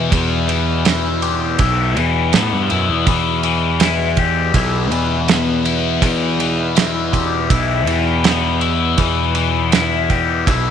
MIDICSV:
0, 0, Header, 1, 5, 480
1, 0, Start_track
1, 0, Key_signature, 1, "minor"
1, 0, Tempo, 740741
1, 75, Time_signature, 4, 2, 24, 8
1, 6937, End_track
2, 0, Start_track
2, 0, Title_t, "Overdriven electric guitar"
2, 0, Program_c, 0, 29
2, 0, Note_on_c, 0, 52, 60
2, 0, Note_on_c, 0, 59, 73
2, 0, Note_on_c, 0, 64, 68
2, 0, Note_on_c, 0, 67, 72
2, 73, Note_off_c, 0, 52, 0
2, 75, Note_on_c, 0, 52, 76
2, 307, Note_off_c, 0, 52, 0
2, 310, Note_on_c, 0, 52, 60
2, 547, Note_off_c, 0, 64, 0
2, 549, Note_on_c, 0, 64, 60
2, 788, Note_off_c, 0, 67, 0
2, 791, Note_on_c, 0, 67, 73
2, 1033, Note_off_c, 0, 64, 0
2, 1036, Note_on_c, 0, 64, 65
2, 1273, Note_off_c, 0, 52, 0
2, 1276, Note_on_c, 0, 52, 61
2, 1513, Note_off_c, 0, 59, 0
2, 1515, Note_on_c, 0, 59, 69
2, 1750, Note_off_c, 0, 64, 0
2, 1752, Note_on_c, 0, 64, 66
2, 1994, Note_off_c, 0, 52, 0
2, 1997, Note_on_c, 0, 52, 69
2, 2230, Note_off_c, 0, 52, 0
2, 2233, Note_on_c, 0, 52, 59
2, 2467, Note_off_c, 0, 64, 0
2, 2470, Note_on_c, 0, 64, 64
2, 2708, Note_off_c, 0, 67, 0
2, 2710, Note_on_c, 0, 67, 76
2, 2946, Note_off_c, 0, 64, 0
2, 2948, Note_on_c, 0, 64, 60
2, 3181, Note_off_c, 0, 52, 0
2, 3184, Note_on_c, 0, 52, 63
2, 3424, Note_off_c, 0, 59, 0
2, 3427, Note_on_c, 0, 59, 69
2, 3659, Note_off_c, 0, 64, 0
2, 3662, Note_on_c, 0, 64, 65
2, 3896, Note_off_c, 0, 52, 0
2, 3899, Note_on_c, 0, 52, 73
2, 4138, Note_off_c, 0, 52, 0
2, 4141, Note_on_c, 0, 52, 59
2, 4372, Note_off_c, 0, 64, 0
2, 4375, Note_on_c, 0, 64, 72
2, 4615, Note_off_c, 0, 67, 0
2, 4618, Note_on_c, 0, 67, 72
2, 4856, Note_off_c, 0, 64, 0
2, 4859, Note_on_c, 0, 64, 70
2, 5096, Note_off_c, 0, 52, 0
2, 5099, Note_on_c, 0, 52, 60
2, 5342, Note_off_c, 0, 59, 0
2, 5344, Note_on_c, 0, 59, 63
2, 5577, Note_off_c, 0, 64, 0
2, 5579, Note_on_c, 0, 64, 68
2, 5818, Note_off_c, 0, 52, 0
2, 5821, Note_on_c, 0, 52, 77
2, 6058, Note_off_c, 0, 52, 0
2, 6061, Note_on_c, 0, 52, 59
2, 6294, Note_off_c, 0, 64, 0
2, 6297, Note_on_c, 0, 64, 70
2, 6540, Note_off_c, 0, 67, 0
2, 6543, Note_on_c, 0, 67, 73
2, 6782, Note_off_c, 0, 64, 0
2, 6784, Note_on_c, 0, 64, 64
2, 6937, Note_off_c, 0, 52, 0
2, 6937, Note_off_c, 0, 59, 0
2, 6937, Note_off_c, 0, 64, 0
2, 6937, Note_off_c, 0, 67, 0
2, 6937, End_track
3, 0, Start_track
3, 0, Title_t, "Synth drone"
3, 0, Program_c, 1, 95
3, 0, Note_on_c, 1, 40, 76
3, 0, Note_on_c, 1, 47, 76
3, 1992, Note_off_c, 1, 47, 0
3, 1995, Note_off_c, 1, 40, 0
3, 2000, Note_on_c, 1, 47, 75
3, 2002, Note_on_c, 1, 40, 77
3, 6937, Note_off_c, 1, 40, 0
3, 6937, Note_off_c, 1, 47, 0
3, 6937, End_track
4, 0, Start_track
4, 0, Title_t, "Picked electric bass"
4, 0, Program_c, 2, 34
4, 78, Note_on_c, 2, 40, 86
4, 1008, Note_off_c, 2, 40, 0
4, 1033, Note_on_c, 2, 35, 88
4, 1285, Note_off_c, 2, 35, 0
4, 1285, Note_on_c, 2, 40, 77
4, 1502, Note_off_c, 2, 40, 0
4, 1520, Note_on_c, 2, 45, 74
4, 1624, Note_off_c, 2, 45, 0
4, 1634, Note_on_c, 2, 43, 80
4, 1741, Note_off_c, 2, 43, 0
4, 1759, Note_on_c, 2, 42, 86
4, 1863, Note_off_c, 2, 42, 0
4, 1871, Note_on_c, 2, 40, 83
4, 1979, Note_off_c, 2, 40, 0
4, 1989, Note_on_c, 2, 40, 86
4, 2923, Note_off_c, 2, 40, 0
4, 2941, Note_on_c, 2, 35, 88
4, 3182, Note_off_c, 2, 35, 0
4, 3182, Note_on_c, 2, 40, 78
4, 3879, Note_off_c, 2, 40, 0
4, 3905, Note_on_c, 2, 40, 87
4, 4841, Note_off_c, 2, 40, 0
4, 4861, Note_on_c, 2, 35, 93
4, 5096, Note_off_c, 2, 35, 0
4, 5096, Note_on_c, 2, 40, 82
4, 5797, Note_off_c, 2, 40, 0
4, 5817, Note_on_c, 2, 40, 93
4, 6759, Note_off_c, 2, 40, 0
4, 6787, Note_on_c, 2, 35, 95
4, 6937, Note_off_c, 2, 35, 0
4, 6937, End_track
5, 0, Start_track
5, 0, Title_t, "Drums"
5, 78, Note_on_c, 9, 36, 103
5, 80, Note_on_c, 9, 51, 84
5, 143, Note_off_c, 9, 36, 0
5, 144, Note_off_c, 9, 51, 0
5, 316, Note_on_c, 9, 51, 71
5, 381, Note_off_c, 9, 51, 0
5, 552, Note_on_c, 9, 51, 82
5, 559, Note_on_c, 9, 38, 100
5, 617, Note_off_c, 9, 51, 0
5, 624, Note_off_c, 9, 38, 0
5, 792, Note_on_c, 9, 51, 61
5, 857, Note_off_c, 9, 51, 0
5, 1028, Note_on_c, 9, 51, 80
5, 1032, Note_on_c, 9, 36, 111
5, 1093, Note_off_c, 9, 51, 0
5, 1097, Note_off_c, 9, 36, 0
5, 1274, Note_on_c, 9, 51, 63
5, 1339, Note_off_c, 9, 51, 0
5, 1508, Note_on_c, 9, 51, 83
5, 1515, Note_on_c, 9, 38, 109
5, 1573, Note_off_c, 9, 51, 0
5, 1580, Note_off_c, 9, 38, 0
5, 1749, Note_on_c, 9, 51, 56
5, 1813, Note_off_c, 9, 51, 0
5, 1987, Note_on_c, 9, 51, 86
5, 1988, Note_on_c, 9, 36, 110
5, 2052, Note_off_c, 9, 51, 0
5, 2053, Note_off_c, 9, 36, 0
5, 2224, Note_on_c, 9, 51, 62
5, 2289, Note_off_c, 9, 51, 0
5, 2462, Note_on_c, 9, 51, 90
5, 2469, Note_on_c, 9, 38, 94
5, 2526, Note_off_c, 9, 51, 0
5, 2534, Note_off_c, 9, 38, 0
5, 2701, Note_on_c, 9, 51, 65
5, 2703, Note_on_c, 9, 36, 77
5, 2766, Note_off_c, 9, 51, 0
5, 2768, Note_off_c, 9, 36, 0
5, 2943, Note_on_c, 9, 36, 117
5, 2943, Note_on_c, 9, 51, 93
5, 3007, Note_off_c, 9, 51, 0
5, 3008, Note_off_c, 9, 36, 0
5, 3185, Note_on_c, 9, 51, 60
5, 3250, Note_off_c, 9, 51, 0
5, 3423, Note_on_c, 9, 51, 87
5, 3430, Note_on_c, 9, 38, 108
5, 3488, Note_off_c, 9, 51, 0
5, 3495, Note_off_c, 9, 38, 0
5, 3664, Note_on_c, 9, 51, 66
5, 3728, Note_off_c, 9, 51, 0
5, 3901, Note_on_c, 9, 36, 104
5, 3902, Note_on_c, 9, 51, 88
5, 3966, Note_off_c, 9, 36, 0
5, 3967, Note_off_c, 9, 51, 0
5, 4147, Note_on_c, 9, 51, 64
5, 4212, Note_off_c, 9, 51, 0
5, 4384, Note_on_c, 9, 51, 86
5, 4391, Note_on_c, 9, 38, 103
5, 4449, Note_off_c, 9, 51, 0
5, 4456, Note_off_c, 9, 38, 0
5, 4622, Note_on_c, 9, 36, 69
5, 4624, Note_on_c, 9, 51, 66
5, 4687, Note_off_c, 9, 36, 0
5, 4689, Note_off_c, 9, 51, 0
5, 4862, Note_on_c, 9, 36, 118
5, 4863, Note_on_c, 9, 51, 90
5, 4926, Note_off_c, 9, 36, 0
5, 4928, Note_off_c, 9, 51, 0
5, 5101, Note_on_c, 9, 51, 68
5, 5166, Note_off_c, 9, 51, 0
5, 5340, Note_on_c, 9, 51, 89
5, 5347, Note_on_c, 9, 38, 111
5, 5405, Note_off_c, 9, 51, 0
5, 5412, Note_off_c, 9, 38, 0
5, 5581, Note_on_c, 9, 51, 54
5, 5645, Note_off_c, 9, 51, 0
5, 5817, Note_on_c, 9, 51, 77
5, 5820, Note_on_c, 9, 36, 98
5, 5882, Note_off_c, 9, 51, 0
5, 5885, Note_off_c, 9, 36, 0
5, 6057, Note_on_c, 9, 51, 58
5, 6122, Note_off_c, 9, 51, 0
5, 6300, Note_on_c, 9, 51, 82
5, 6307, Note_on_c, 9, 38, 107
5, 6364, Note_off_c, 9, 51, 0
5, 6372, Note_off_c, 9, 38, 0
5, 6543, Note_on_c, 9, 51, 55
5, 6544, Note_on_c, 9, 36, 71
5, 6608, Note_off_c, 9, 51, 0
5, 6609, Note_off_c, 9, 36, 0
5, 6786, Note_on_c, 9, 36, 110
5, 6788, Note_on_c, 9, 51, 86
5, 6851, Note_off_c, 9, 36, 0
5, 6853, Note_off_c, 9, 51, 0
5, 6937, End_track
0, 0, End_of_file